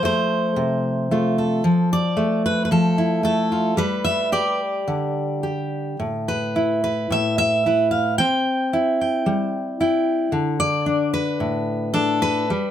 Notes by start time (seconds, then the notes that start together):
Already playing: F3
0.03 A3 C5
0.56 C3
1.11 A3 F4
1.38 A4
1.64 F3
1.93 D5
2.17 A3
2.46 B4
2.65 B4
2.71 F3 A4
2.98 E4
3.23 A3 A4
3.52 F4
3.77 G3 B4
4.04 E5
4.32 G4 D5
4.88 D3
5.43 G4
6.00 A2
6.28 B4
6.56 E4
6.84 B4
7.10 A2 E5
7.38 E5
7.66 E4 B4
7.91 F5
8.18 C4 G5
8.73 E4
9.01 G5
9.26 G3
9.80 E4 G5
10.32 D3
10.60 D5
10.86 D4
11.14 B4
11.40 A2
11.94 D4 A4
12.22 B4
12.50 G3